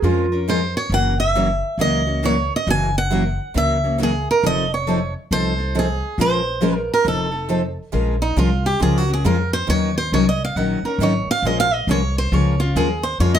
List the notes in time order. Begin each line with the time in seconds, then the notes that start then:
Already playing: A#4
0.02 F2 F3 G#3 C#4 F4 A#4
0.32 C#4 F4 A#4
0.48 F3 G#3 C#4 F4 A#4 C5
0.77 C#5
0.90 F#1 C#3 F#3 E4 A#4
0.94 E3 A#3 C#4 F#4 F#5
1.20 E5
1.35 C#3 E3 F#3 A#3 C#4 E4 F#4 A#4
1.78 C#2 C#3 E3 F#3 A#3 C#4 E4 F#4 A#4 D#5
2.07 A#3 C#4 F#4
2.23 C#3 E3 F#3 A#3 C#4 E4 F#4 A#4 C#5
2.56 D#5
2.67 F#1 C#3 E3 F#3 A#3 C#4 E4 F#4 A#4 G#5
2.98 F#5
3.10 C#3 E3 F#3 A#3 C#4 E4 F#4 A#4
3.54 C#2 C#3 E3 F#3 A#3 C#4 E4 F#4 A#4 E5
3.84 A#3 C#4 F#4
3.98 C#3 E3 F#3 A#3 C#4 E4 F#4 A#4
4.03 G#4
4.31 A#4
4.43 F1 F3 A3 C4 D#4 A4 D#5
4.74 C#5
4.87 F3 A3 C4 D#4 A4
5.31 C2 F3 A3 C4 D#4 A4 C5
5.58 A3 D#4 A4
5.75 F3 A3 C4 D#4 A4
5.79 G#4
6.18 A#1 F3 G#3 C#4 F4 A#4 C5
6.61 F3 G#3 C#4 F4 A#4
6.75 A#4
6.94 A#4
7.04 F1 F3 A3 C4 D#4 A4
7.31 A3 D#4 A4
7.49 F3 A3 C4 D#4 A4
7.93 A#1 F3 G#3 C#4 F4 A#4
8.22 D#4
8.37 C2 F3 G#3 C#4 F4 A#4
8.66 G4
8.81 C#2 F3 G#3 C#4 F4 G#4 A#4
8.98 F#4
9.08 C#4 F4 A#4
9.13 G#4
9.25 F2 F3 G#3 C#4 F4 A#4
9.53 C5
9.69 D#2 D#3 F#3 C#4 D#4 A#4 C#5
9.98 C5
10.12 C2 D#3 F#3 C#4 D#4 A#4 C#5
10.29 D#5
10.45 F5
10.56 A#1 D#3 F#3 C#4 D#4 A#4 F#5
10.83 D#4 A#4, muted upright bass stroke
10.87 C#4
10.98 G#1 D#3 F#3 C#4 D#4
11.03 A#4 C#5
11.26 muted upright bass stroke
11.31 F5
11.42 A#1 F3 G#3 C#4 F4 A#4
11.46 D#5
11.60 F5
11.74 D#5
11.87 C2 F3 G#3 C#4 F4 A#4 C#5
12.18 C5
12.32 C#2 F3 G#3 C#4 F4 A#4 C#5
12.60 C#4 F4 A#4
12.75 D#2 F3 G#3 C#4 F4 G#4 A#4
13.03 C5
13.20 F2 F3 G#3 C#4 F4 A#4 C#5
13.35 D#5